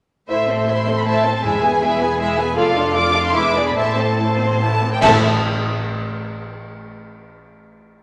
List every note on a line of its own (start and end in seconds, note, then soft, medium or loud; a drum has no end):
0.29 1.41 A1 soft
0.29 1.41 A2 soft
0.29 0.48 A3 soft
0.29 0.48 E4 soft
0.29 0.48 C5 soft
0.29 0.48 E5 soft
0.29 0.66 E5 medium
0.48 0.68 C4 soft
0.48 0.70 A4 soft
0.48 0.68 C5 soft
0.67 0.87 A3 soft
0.67 0.87 E4 soft
0.67 0.87 C5 soft
0.67 0.89 E5 soft
0.67 0.97 C6 medium
0.86 1.07 C4 soft
0.86 1.07 A4 soft
0.86 1.05 C5 soft
0.97 1.07 B5 medium
1.05 1.24 A3 soft
1.05 1.24 E4 soft
1.05 1.24 C5 soft
1.05 1.25 E5 soft
1.05 1.45 A5 medium
1.25 1.45 C4 soft
1.25 1.45 A4 soft
1.25 1.45 C5 soft
1.43 2.55 E1 soft
1.43 1.97 E2 medium
1.43 2.55 E2 medium
1.43 1.62 G#3 soft
1.43 1.62 E4 soft
1.43 1.62 G#4 soft
1.43 1.62 E5 soft
1.43 2.39 G#5 medium
1.62 1.82 B3 soft
1.62 1.82 G#4 soft
1.62 1.82 B4 soft
1.62 1.82 G#5 soft
1.81 2.01 G#3 soft
1.81 2.01 E4 medium
1.81 2.01 G#4 medium
1.81 2.01 E5 soft
1.99 2.20 B3 medium
1.99 2.20 G#4 medium
1.99 2.20 B4 medium
1.99 2.19 G#5 medium
2.19 2.37 G#3 medium
2.19 2.37 E4 medium
2.19 2.38 G#4 medium
2.19 2.38 E5 medium
2.38 2.57 B3 medium
2.38 2.57 G#4 medium
2.38 2.58 B4 medium
2.38 2.58 G#5 medium
2.56 3.34 F1 medium
2.56 3.34 F2 medium
2.56 2.75 F4 medium
2.56 2.75 A4 medium
2.56 2.75 D5 medium
2.56 2.92 F5 medium
2.76 2.95 D4 soft
2.76 2.93 F4 soft
2.76 2.96 A4 medium
2.76 2.96 F5 medium
2.94 3.12 F4 medium
2.94 3.15 F4 medium
2.94 3.14 A4 medium
2.94 3.15 D5 soft
2.94 3.24 D6 medium
3.13 3.34 D4 medium
3.13 3.34 F4 medium
3.13 3.35 A4 soft
3.13 3.35 F5 medium
3.26 3.35 C6 medium
3.34 3.75 E1 medium
3.34 3.76 E2 medium
3.34 3.53 G#3 medium
3.34 3.53 E4 medium
3.34 3.54 B4 medium
3.34 3.54 E5 medium
3.34 3.65 D6 medium
3.55 3.76 B3 soft
3.55 3.76 D4 soft
3.55 3.77 G#4 soft
3.55 3.77 D5 soft
3.66 3.70 B5 medium
3.75 4.79 A1 medium
3.75 4.80 A2 soft
3.75 3.95 A3 soft
3.75 3.95 E4 soft
3.75 3.96 C5 soft
3.75 3.97 E5 soft
3.75 4.58 A5 medium
3.96 4.18 C4 soft
3.96 4.18 A4 soft
3.96 4.18 C5 soft
4.19 4.40 A3 soft
4.19 4.40 E4 soft
4.19 4.58 C5 medium
4.40 4.61 C4 soft
4.61 4.81 A3 soft
4.61 4.81 E4 soft
4.61 4.93 A5 medium
4.83 5.03 C4 soft
4.94 5.03 G5 medium
5.02 5.26 A1 medium
5.02 5.25 A2 medium
5.02 5.22 A2 loud
5.02 5.26 C4 medium
5.02 5.26 E4 medium
5.02 5.25 A4 medium
5.02 5.25 E5 medium
5.02 5.25 A5 medium
5.02 concert bass drum medium
5.02 crash medium